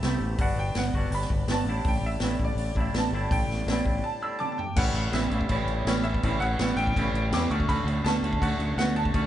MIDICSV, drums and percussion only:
0, 0, Header, 1, 2, 480
1, 0, Start_track
1, 0, Tempo, 365408
1, 511, Time_signature, 4, 2, 24, 8
1, 12171, End_track
2, 0, Start_track
2, 0, Title_t, "Drums"
2, 33, Note_on_c, 9, 46, 51
2, 37, Note_on_c, 9, 38, 110
2, 164, Note_off_c, 9, 46, 0
2, 168, Note_off_c, 9, 38, 0
2, 504, Note_on_c, 9, 46, 58
2, 508, Note_on_c, 9, 36, 111
2, 635, Note_off_c, 9, 46, 0
2, 640, Note_off_c, 9, 36, 0
2, 983, Note_on_c, 9, 46, 58
2, 987, Note_on_c, 9, 38, 104
2, 1114, Note_off_c, 9, 46, 0
2, 1118, Note_off_c, 9, 38, 0
2, 1232, Note_on_c, 9, 36, 73
2, 1363, Note_off_c, 9, 36, 0
2, 1469, Note_on_c, 9, 46, 61
2, 1594, Note_on_c, 9, 38, 32
2, 1601, Note_off_c, 9, 46, 0
2, 1710, Note_on_c, 9, 36, 82
2, 1725, Note_off_c, 9, 38, 0
2, 1842, Note_off_c, 9, 36, 0
2, 1944, Note_on_c, 9, 46, 61
2, 1948, Note_on_c, 9, 38, 104
2, 2076, Note_off_c, 9, 46, 0
2, 2080, Note_off_c, 9, 38, 0
2, 2423, Note_on_c, 9, 46, 60
2, 2428, Note_on_c, 9, 36, 105
2, 2555, Note_off_c, 9, 46, 0
2, 2560, Note_off_c, 9, 36, 0
2, 2887, Note_on_c, 9, 46, 52
2, 2891, Note_on_c, 9, 38, 99
2, 3018, Note_off_c, 9, 46, 0
2, 3022, Note_off_c, 9, 38, 0
2, 3146, Note_on_c, 9, 36, 75
2, 3277, Note_off_c, 9, 36, 0
2, 3384, Note_on_c, 9, 46, 49
2, 3515, Note_off_c, 9, 46, 0
2, 3626, Note_on_c, 9, 36, 75
2, 3758, Note_off_c, 9, 36, 0
2, 3864, Note_on_c, 9, 46, 52
2, 3868, Note_on_c, 9, 38, 110
2, 3996, Note_off_c, 9, 46, 0
2, 4000, Note_off_c, 9, 38, 0
2, 4348, Note_on_c, 9, 36, 114
2, 4352, Note_on_c, 9, 46, 55
2, 4479, Note_off_c, 9, 36, 0
2, 4484, Note_off_c, 9, 46, 0
2, 4605, Note_on_c, 9, 38, 29
2, 4736, Note_off_c, 9, 38, 0
2, 4832, Note_on_c, 9, 46, 54
2, 4836, Note_on_c, 9, 38, 113
2, 4964, Note_off_c, 9, 46, 0
2, 4968, Note_off_c, 9, 38, 0
2, 5064, Note_on_c, 9, 36, 88
2, 5196, Note_off_c, 9, 36, 0
2, 5792, Note_on_c, 9, 48, 65
2, 5924, Note_off_c, 9, 48, 0
2, 6027, Note_on_c, 9, 43, 73
2, 6158, Note_off_c, 9, 43, 0
2, 6259, Note_on_c, 9, 49, 127
2, 6259, Note_on_c, 9, 57, 86
2, 6261, Note_on_c, 9, 36, 127
2, 6390, Note_off_c, 9, 49, 0
2, 6390, Note_off_c, 9, 57, 0
2, 6392, Note_off_c, 9, 36, 0
2, 6495, Note_on_c, 9, 57, 58
2, 6626, Note_off_c, 9, 57, 0
2, 6739, Note_on_c, 9, 57, 82
2, 6743, Note_on_c, 9, 38, 101
2, 6870, Note_off_c, 9, 57, 0
2, 6874, Note_off_c, 9, 38, 0
2, 6979, Note_on_c, 9, 57, 58
2, 7103, Note_on_c, 9, 36, 85
2, 7111, Note_off_c, 9, 57, 0
2, 7212, Note_on_c, 9, 57, 84
2, 7221, Note_off_c, 9, 36, 0
2, 7221, Note_on_c, 9, 36, 103
2, 7343, Note_off_c, 9, 57, 0
2, 7352, Note_off_c, 9, 36, 0
2, 7456, Note_on_c, 9, 57, 54
2, 7587, Note_off_c, 9, 57, 0
2, 7709, Note_on_c, 9, 57, 83
2, 7713, Note_on_c, 9, 38, 121
2, 7840, Note_off_c, 9, 57, 0
2, 7844, Note_off_c, 9, 38, 0
2, 7944, Note_on_c, 9, 57, 55
2, 8072, Note_on_c, 9, 36, 86
2, 8075, Note_off_c, 9, 57, 0
2, 8187, Note_on_c, 9, 57, 86
2, 8191, Note_off_c, 9, 36, 0
2, 8191, Note_on_c, 9, 36, 103
2, 8318, Note_off_c, 9, 57, 0
2, 8323, Note_off_c, 9, 36, 0
2, 8432, Note_on_c, 9, 57, 62
2, 8564, Note_off_c, 9, 57, 0
2, 8658, Note_on_c, 9, 57, 83
2, 8662, Note_on_c, 9, 38, 116
2, 8789, Note_off_c, 9, 57, 0
2, 8793, Note_off_c, 9, 38, 0
2, 8911, Note_on_c, 9, 57, 60
2, 9027, Note_on_c, 9, 36, 89
2, 9042, Note_off_c, 9, 57, 0
2, 9148, Note_off_c, 9, 36, 0
2, 9148, Note_on_c, 9, 36, 104
2, 9153, Note_on_c, 9, 57, 84
2, 9279, Note_off_c, 9, 36, 0
2, 9284, Note_off_c, 9, 57, 0
2, 9395, Note_on_c, 9, 57, 63
2, 9526, Note_off_c, 9, 57, 0
2, 9622, Note_on_c, 9, 57, 92
2, 9626, Note_on_c, 9, 38, 118
2, 9753, Note_off_c, 9, 57, 0
2, 9757, Note_off_c, 9, 38, 0
2, 9867, Note_on_c, 9, 57, 69
2, 9983, Note_on_c, 9, 36, 89
2, 9999, Note_off_c, 9, 57, 0
2, 10102, Note_off_c, 9, 36, 0
2, 10102, Note_on_c, 9, 36, 105
2, 10108, Note_on_c, 9, 57, 86
2, 10234, Note_off_c, 9, 36, 0
2, 10240, Note_off_c, 9, 57, 0
2, 10347, Note_on_c, 9, 57, 65
2, 10478, Note_off_c, 9, 57, 0
2, 10582, Note_on_c, 9, 57, 83
2, 10586, Note_on_c, 9, 38, 110
2, 10714, Note_off_c, 9, 57, 0
2, 10718, Note_off_c, 9, 38, 0
2, 10822, Note_on_c, 9, 57, 70
2, 10938, Note_on_c, 9, 36, 83
2, 10954, Note_off_c, 9, 57, 0
2, 11058, Note_off_c, 9, 36, 0
2, 11058, Note_on_c, 9, 36, 98
2, 11069, Note_on_c, 9, 57, 86
2, 11189, Note_off_c, 9, 36, 0
2, 11200, Note_off_c, 9, 57, 0
2, 11295, Note_on_c, 9, 57, 65
2, 11427, Note_off_c, 9, 57, 0
2, 11542, Note_on_c, 9, 57, 82
2, 11545, Note_on_c, 9, 38, 115
2, 11673, Note_off_c, 9, 57, 0
2, 11677, Note_off_c, 9, 38, 0
2, 11769, Note_on_c, 9, 57, 62
2, 11893, Note_on_c, 9, 36, 97
2, 11901, Note_off_c, 9, 57, 0
2, 12006, Note_on_c, 9, 57, 86
2, 12011, Note_off_c, 9, 36, 0
2, 12011, Note_on_c, 9, 36, 100
2, 12137, Note_off_c, 9, 57, 0
2, 12143, Note_off_c, 9, 36, 0
2, 12171, End_track
0, 0, End_of_file